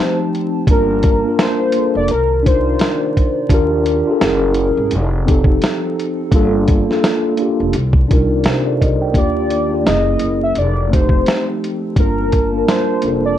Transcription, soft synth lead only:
0, 0, Header, 1, 2, 480
1, 0, Start_track
1, 0, Tempo, 705882
1, 462, Time_signature, 4, 2, 24, 8
1, 9101, End_track
2, 0, Start_track
2, 0, Title_t, "Soft synth lead"
2, 0, Program_c, 0, 80
2, 0, Note_on_c, 0, 72, 83
2, 109, Note_off_c, 0, 72, 0
2, 479, Note_on_c, 0, 70, 96
2, 923, Note_off_c, 0, 70, 0
2, 956, Note_on_c, 0, 72, 100
2, 1307, Note_off_c, 0, 72, 0
2, 1337, Note_on_c, 0, 74, 92
2, 1420, Note_off_c, 0, 74, 0
2, 1436, Note_on_c, 0, 70, 94
2, 1646, Note_off_c, 0, 70, 0
2, 1679, Note_on_c, 0, 72, 75
2, 2363, Note_off_c, 0, 72, 0
2, 6236, Note_on_c, 0, 74, 89
2, 6681, Note_off_c, 0, 74, 0
2, 6712, Note_on_c, 0, 75, 85
2, 7065, Note_off_c, 0, 75, 0
2, 7095, Note_on_c, 0, 76, 83
2, 7197, Note_on_c, 0, 74, 70
2, 7207, Note_off_c, 0, 76, 0
2, 7406, Note_off_c, 0, 74, 0
2, 7438, Note_on_c, 0, 72, 83
2, 7788, Note_off_c, 0, 72, 0
2, 8153, Note_on_c, 0, 70, 98
2, 8600, Note_off_c, 0, 70, 0
2, 8632, Note_on_c, 0, 72, 90
2, 8985, Note_off_c, 0, 72, 0
2, 9013, Note_on_c, 0, 74, 83
2, 9098, Note_off_c, 0, 74, 0
2, 9101, End_track
0, 0, End_of_file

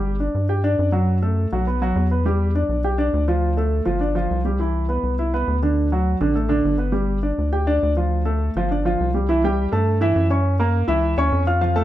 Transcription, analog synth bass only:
0, 0, Header, 1, 2, 480
1, 0, Start_track
1, 0, Key_signature, 1, "major"
1, 0, Tempo, 292826
1, 1770, Time_signature, 4, 2, 24, 8
1, 19410, End_track
2, 0, Start_track
2, 0, Title_t, "Analog synth bass"
2, 0, Program_c, 0, 38
2, 0, Note_on_c, 0, 31, 91
2, 478, Note_off_c, 0, 31, 0
2, 568, Note_on_c, 0, 43, 75
2, 1239, Note_off_c, 0, 43, 0
2, 1292, Note_on_c, 0, 42, 87
2, 2404, Note_off_c, 0, 42, 0
2, 2501, Note_on_c, 0, 35, 76
2, 3168, Note_off_c, 0, 35, 0
2, 3209, Note_on_c, 0, 40, 102
2, 4324, Note_off_c, 0, 40, 0
2, 4408, Note_on_c, 0, 35, 80
2, 5083, Note_off_c, 0, 35, 0
2, 5139, Note_on_c, 0, 38, 95
2, 6251, Note_off_c, 0, 38, 0
2, 6336, Note_on_c, 0, 31, 80
2, 7009, Note_off_c, 0, 31, 0
2, 7059, Note_on_c, 0, 36, 87
2, 8172, Note_off_c, 0, 36, 0
2, 8250, Note_on_c, 0, 36, 71
2, 8926, Note_off_c, 0, 36, 0
2, 8977, Note_on_c, 0, 38, 87
2, 10091, Note_off_c, 0, 38, 0
2, 10175, Note_on_c, 0, 33, 86
2, 10849, Note_off_c, 0, 33, 0
2, 10893, Note_on_c, 0, 31, 100
2, 12010, Note_off_c, 0, 31, 0
2, 12103, Note_on_c, 0, 38, 79
2, 12773, Note_off_c, 0, 38, 0
2, 12831, Note_on_c, 0, 38, 89
2, 13937, Note_off_c, 0, 38, 0
2, 14028, Note_on_c, 0, 31, 79
2, 14694, Note_off_c, 0, 31, 0
2, 14759, Note_on_c, 0, 36, 89
2, 15857, Note_off_c, 0, 36, 0
2, 15942, Note_on_c, 0, 43, 84
2, 16608, Note_off_c, 0, 43, 0
2, 16651, Note_on_c, 0, 42, 94
2, 17758, Note_off_c, 0, 42, 0
2, 17841, Note_on_c, 0, 37, 75
2, 18290, Note_off_c, 0, 37, 0
2, 18316, Note_on_c, 0, 39, 72
2, 18543, Note_off_c, 0, 39, 0
2, 18559, Note_on_c, 0, 41, 96
2, 19410, Note_off_c, 0, 41, 0
2, 19410, End_track
0, 0, End_of_file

